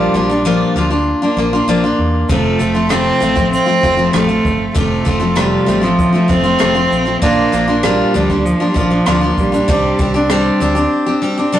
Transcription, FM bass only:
0.14 0.65 A#1 medium
0.76 1.14 D2 medium
1.37 1.62 A#1 loud
1.68 1.93 A#1 medium
1.99 2.24 E2 medium
2.30 2.55 F1 medium
2.60 3.11 F1 medium
3.22 3.60 A1 medium
3.83 4.09 F1 medium
4.15 4.40 A1 medium
4.45 4.70 G1 medium
4.76 5.01 F1 loud
5.07 5.57 F1 medium
5.68 6.06 A1 medium
6.30 6.55 F1 medium
6.61 6.86 F1 medium
6.92 7.17 A#1 medium
7.23 7.48 A#1 loud
7.54 8.04 A#1 loud
8.16 8.53 D2 medium
8.76 9.01 A#1 loud
9.07 9.33 D2 medium
9.38 9.63 A#1 medium
9.69 9.94 C2 loud
9.99 10.50 C2 medium
10.61 10.87 D2 medium

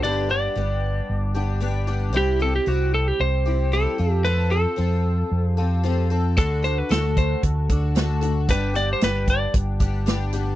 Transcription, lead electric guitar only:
0.03 0.30 D5 medium
0.31 1.85 D5 medium
2.17 2.41 G4 medium
2.42 2.55 A4 medium
2.56 2.68 G4 medium
2.68 2.94 F#4 medium
2.94 3.08 A4 medium
3.08 3.21 G4 medium
3.21 3.75 C5 loud
3.73 4.22 A4 medium
4.25 4.53 B4 medium
4.51 5.54 A4 medium
5.54 6.06 G4 medium
6.38 6.65 A4 medium
6.64 6.78 C5 medium
6.78 6.91 B4 medium
6.91 7.18 A4 medium
7.18 7.42 C5 medium
8.50 8.74 B4 medium
8.76 8.89 D5 loud
8.93 9.04 C5 medium
9.04 9.27 B4 medium
9.30 9.54 D5 medium

